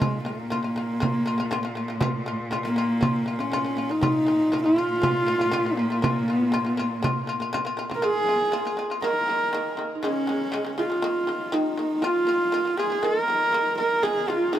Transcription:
Already playing: G#3
0.00 A#2 A#3 F4, frame drum
0.25 A#3 F4
0.40 frame drum
0.50 A#3 F4, frame drum
0.63 A#3 F4
0.76 A#3 F4, frame drum
1.00 A#3 F4, frame drum
1.26 A#3 F4
1.38 A#3 F4, frame drum
1.51 A#3 F4, frame drum
1.63 A#3 F4
1.75 A#3 F4
1.88 A#3 F4
2.01 A#3 F4, frame drum
2.26 A#3 F4
2.40 frame drum
2.51 A#3 F4, frame drum
2.63 A#3 F4
2.76 A#3 F4, frame drum
3.01 A#3 F4, frame drum
3.26 A#3 F4
3.39 A#3 C#4 F4, frame drum
3.52 A#3 F4, frame drum
3.64 A#3 F4
3.77 A#3 F4
3.89 A#3 D#4 F4
4.01 A#2 A#3 F4, frame drum
4.26 A#3 F4
4.40 frame drum
4.52 A#3 F4, frame drum
4.64 A#3 F4
4.76 A#3 F4, frame drum
5.02 A#3 F4, frame drum
5.26 A#3 F4
5.39 A#3 F4, frame drum
5.51 A#3 F4, frame drum
5.65 A#3 F4
5.76 A#3 F4
5.90 A#3 F4
6.02 A#3 F4, frame drum
6.28 A#3 F4
6.34 B3
6.41 frame drum
6.50 A#3 F4, frame drum
6.65 A#3 B3 F4
6.77 A#3 F4, frame drum
6.83 A#3
7.02 A#3 F4, frame drum
7.27 A#3 F4
7.40 A#3 F4, frame drum
7.53 A#3 F4, frame drum
7.65 A#3 F4
7.77 A#3 F4
7.90 A#3 F4, frame drum
7.95 A#4
8.02 A#3 F4 G#4
8.27 A#3 F4
8.52 A#3 F4 G#4
8.65 A#3 F4
8.77 A#3 F4
8.90 A#3 F4
9.02 D#3 A#3 A#4
9.28 D#3 A#3
9.53 D#3 A#3
9.77 D#3 A#3
9.95 D#4
10.03 C#3 G#3 C#4
10.27 C#3 G#3
10.52 C#3 G#3
10.65 C#3 G#3
10.78 C#3 G#3 F4
10.90 C#3 G#3
11.02 D#3 A#3
11.27 D#3 A#3 F4
11.47 F4
11.52 D#3 A#3 D#4
11.77 D#3 A#3
12.02 A#3 F4
12.27 A#3 F4
12.52 A#3 F4
12.65 A#3 F4
12.77 A#3 F4 G#4
12.90 A#3 F4
13.03 D#3 A#3 A#4
13.28 D#3 A#3
13.53 D#3 A#3
13.78 D#3 A#3 A#4
14.03 C#3 G#3 G#4
14.28 C#3 G#3 F4
14.52 C#3 G#3 D#4

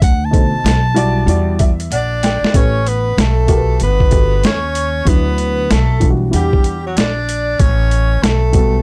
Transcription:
0.02 D2 F#5, kick, closed hi-hat
0.25 A5
0.31 B2 D#4 A4 C5, kick, closed hi-hat
0.54 muted upright bass stroke
0.64 B1, snare, closed hi-hat
0.94 G3 E4 F#4 D5, closed hi-hat
1.26 E2 G3 E4 F#4 D5, closed hi-hat
1.59 E5, kick, closed hi-hat
1.80 closed hi-hat
1.91 A#1 D4 D5 F#5, closed hi-hat
2.23 G5, snare, closed hi-hat
2.43 muted upright bass stroke, snare
2.53 A1 A3 C#4 G4 B4 C#5, kick, closed hi-hat
2.87 B3 B4, closed hi-hat
3.17 B1 A3 A4, snare, closed hi-hat
3.47 A3 F#4 G4 A#4, kick, closed hi-hat
3.57 B4
3.80 G1 B3 B4, closed hi-hat
4.00 kick
4.10 A3 F#4 G4 B4, kick, closed hi-hat
4.43 D#2 C#4 C#5, snare, closed hi-hat
4.75 closed hi-hat
5.05 D2 F#3 B3 D4 E4 B4, kick, closed hi-hat
5.38 closed hi-hat
5.71 B1 A3 A4, snare, closed hi-hat
6.00 E3 G3 D4 F4, kick, closed hi-hat
6.10 F#4
6.31 E2 E3 G3 D4 F#5, closed hi-hat
6.35 G4
6.53 kick
6.64 closed hi-hat
6.86 F#3 F#4
6.97 A#1 D4 D5, snare, closed hi-hat
7.29 closed hi-hat
7.59 A1 C#4 C#5, kick, closed hi-hat
7.91 closed hi-hat
8.22 B1 A3 A4, snare, closed hi-hat
8.53 G3 B3 F#4 A4, kick, closed hi-hat

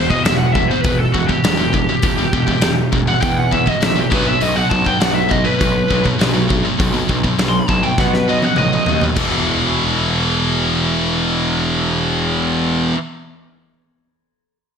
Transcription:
Already playing: E1 E2 B2
0.09 E2 B2 D#5, kick
0.23 E1 E2 B2 E5, snare, open hi-hat
0.38 F#5
0.53 E2 B2 E5, kick
0.68 E2 B2 C5
0.82 E1 E2 B2 B4, kick, open hi-hat
0.98 A4
1.13 E1 E2 B2 F#4, kick
1.27 E2 B2 G4, kick
1.44 E1 E2 B2, snare, open hi-hat
1.57 E2 B2
1.73 E2 B2, kick
1.89 E2 B2
2.02 E1 E2 B2, kick, open hi-hat
2.18 E2 B2
2.33 E1 E2 B2, kick
2.47 E2 B2, kick
2.61 E1 E2 B2, snare, open hi-hat
2.92 E1 E2 B2, kick
3.07 E2 B2 F#5
3.21 E2 B2 G5, kick, open hi-hat
3.38 F#5
3.51 E2 B2 E5, kick
3.66 E2 B2 D#5, kick
3.81 A#1 E2 B2 E5, snare, open hi-hat
3.96 E2 B2 G4
4.10 B1 B2 F#3 B3 B4, kick
4.26 B2 F#3 E5
4.40 B1 B2 F#3 D#5, open hi-hat
4.56 B2 F#3 F#5
4.69 B1 B2 F#3 A5, kick
4.84 B2 F#3 G5, kick
5.00 B1 B2 F#3 F#5, snare, open hi-hat
5.14 E5
5.29 B2 F#3 D#5, kick
5.45 B2 F#3 B4
5.60 B1 B2 F#3, kick, open hi-hat
5.90 B1 B2 F#3, kick
6.04 B2 F#3, kick
6.19 B1 B2 F#3, snare, open hi-hat
6.34 B2 F#3
6.49 B2 F#3, kick
6.65 B2 F#3
6.79 B1 B2 F#3, kick, open hi-hat
6.94 B2 F#3
7.09 B1 B2 F#3, kick
7.23 B2 F#3, kick
7.39 B1 B2 F#3, snare, open hi-hat
7.49 C6
7.59 B5
7.68 B1 B2 F#3 A5, kick
7.83 B2 F#3 G5
7.98 B2 F#3 F#5, kick, snare
8.14 B4, snare
8.28 B2 F#3 D#5
8.42 B2 F#3 F#5, high tom
8.56 A1 B2 F#3 D#5, mid tom
8.73 B2 F#3
8.86 D#2 B2 F#3, floor tom
9.01 B2 F#3, floor tom
9.16 E1 E2 B2 E3, kick, crash

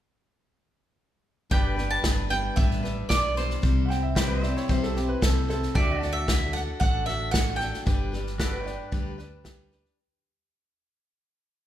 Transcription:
1.50 G1 G2 D3 G3 B3 D4 G4 B4 G5, kick, snare
1.54 D5
1.76 G3 B3 D4 B4, snare
1.90 A5
2.02 G1 G3 B3 D4 B4, kick, snare, hi-hat pedal
2.29 G3 B3 D4 B4 G5, snare
2.56 A1 G2 D3 G3 B3 D4 B4 E5, kick, snare
2.71 snare
2.83 G3 B3 D4 B4, snare
3.09 B1 G3 B3 D4 B4 D5, kick, snare, hi-hat pedal
3.35 G3 B3 D4 B4 C5, snare
3.50 snare
3.62 C2 C3 G3 C4 E4 C5, kick, snare
3.85 C5 F#5
3.90 C4 E4 G5, snare
4.03 E5
4.15 G3 C4 E4 G4 B4 C5 D5, kick, snare, hi-hat pedal
4.28 B4
4.37 C5
4.43 C4 E4 D5 E5, snare
4.56 C#5, snare
4.68 B1 C3 G3 C4 E4 C5, kick, snare
4.83 A4, snare
4.95 C4 E4 G4 C5, snare
5.08 B4
5.21 C2 G3 C4 E4 A4 C5, kick, snare, hi-hat pedal
5.48 C4 E4 A4 C5, snare
5.63 snare
5.75 D2 D3 A3 D4 F#4 G4 A4 D5 E5, kick, snare
5.95 F#4
6.01 D4 F#4 A4 D5, snare
6.13 E5
6.26 A3 D4 F#4, kick, snare, hi-hat pedal
6.53 D4 F#4 A4 F#5, snare
6.80 A1 D3 A3 D4 F#4 A4 F#5, kick, snare
7.06 F#4 A4 E5, snare
7.10 D4
7.31 A3 D4 F#4 F#5, kick, snare, hi-hat pedal
7.56 A4 G5, snare
7.61 D4 F#4
7.74 snare
7.86 G1 G2 D3 G3 D4 G4 B4, kick, snare
8.12 G3 D4 G4 B4, snare
8.27 snare
8.38 G3 D4 F#4 G4 A4 B4 D5, kick, snare, hi-hat pedal
8.53 B4
8.60 G4 C#5
8.64 G3 D4 G4 B4 D5, snare
8.92 D2 G2 D3 G3 D4 G4 B4, kick, snare
9.18 G3 D4 G4 B4, snare
9.44 G3 D4 G4 B4, kick, snare, hi-hat pedal
9.72 G3 D4 G4 B4, snare
9.85 snare

